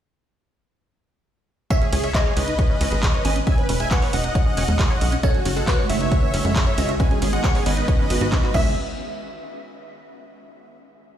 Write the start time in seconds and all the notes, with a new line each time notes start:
1.70 C#4 C#5 E5, kick, closed hi-hat
1.81 C#4 G#4, closed hi-hat
1.93 C#2 C#4 G#4, open hi-hat, ride
2.04 G#3 C#5 E5, closed hi-hat
2.15 G#4 C#5 D#5, kick, clap, closed hi-hat
2.26 G#4 C#5, clap
2.37 C#2 C#4 B4 D#5, open hi-hat, ride
2.48 D#4, closed hi-hat
2.59 C#5, kick, closed hi-hat
2.70 C#4
2.81 C#2 C#4, open hi-hat, ride
2.92 G#1 G#3, closed hi-hat
3.03 G#4, kick, clap, closed hi-hat
3.14 C#5, closed hi-hat
3.25 G#1 C#4 G#5, open hi-hat, ride
3.36 C#4, closed hi-hat
3.47 C#4 E5 G#5, kick, closed hi-hat
3.58 C#4 B4, closed hi-hat
3.69 E1 C#4 B4, open hi-hat, ride
3.80 G#3 E5 G#5, closed hi-hat
3.91 B4 C#5 F#5, kick, clap, closed hi-hat
4.02 B4 C#5, clap, open hi-hat
4.13 E1 C#4 D#5 F#5, open hi-hat, ride
4.24 D#4, closed hi-hat
4.35 C#5, kick, closed hi-hat
4.46 C#4
4.57 E1 C#4, open hi-hat, ride
4.68 E2 G#3, closed hi-hat
4.79 G#4, kick, clap, closed hi-hat
4.90 C#5, clap, closed hi-hat
5.01 B1 C#4, open hi-hat, ride
5.12 C#4, closed hi-hat
5.23 C#3 G#3 A3 C#4 F#4 A4 C#5 F#5, kick, closed hi-hat
5.34 C#4 F#4, closed hi-hat
5.45 F#1 C#4 F#4, open hi-hat, ride
5.56 C#3 G#3 A3 F#4 A4 F#5, closed hi-hat
5.67 F#4 B4 C#5, kick, clap, closed hi-hat
5.78 C#3 G#3 A3 F#4 C#5, clap
5.89 F#1 C#4 C#5 E5, open hi-hat, ride
6.01 C#3 G#3 A3 D#4 F#4, closed hi-hat
6.12 C#5, kick, closed hi-hat
6.23 C#4
6.34 F#1 C#3 G#3 A3 C#4 F#4, open hi-hat, ride
6.45 F#2 G#3, closed hi-hat
6.56 C#3 G#3 A3 F#4 G#4, kick, clap, closed hi-hat
6.67 C#5, closed hi-hat
6.78 C#2 C#3 G#3 A3 C#4 F#4 D#5, open hi-hat, ride
6.89 C#4, closed hi-hat
7.00 D#3 G#3 B3 C#4 G#4 B4 G#5, kick, closed hi-hat
7.11 C#4 G#4, closed hi-hat
7.22 G#1 C#4 G#4, open hi-hat, ride
7.33 D#3 G#3 B3 G#4 D#5 F#5, closed hi-hat
7.44 G#4 C#5 F#5, kick, clap, closed hi-hat
7.55 D#3 G#3 B3 G#4 C#5, clap, open hi-hat
7.66 G#1 C#4 B4 D#5, open hi-hat, ride
7.77 D#3 G#3 B3 D#4 G#4, closed hi-hat
7.88 C#5, kick, closed hi-hat
7.99 C#4
8.10 G#1 D#3 G#3 B3 F#4 G#4, open hi-hat, ride
8.21 G#2 F#4, closed hi-hat
8.32 D#3 G#3 B3 C#4 G#4, kick, clap, closed hi-hat
8.43 F#4, clap, closed hi-hat
8.54 C#2 E3 G#3 C#4 G#4 E5, kick, crash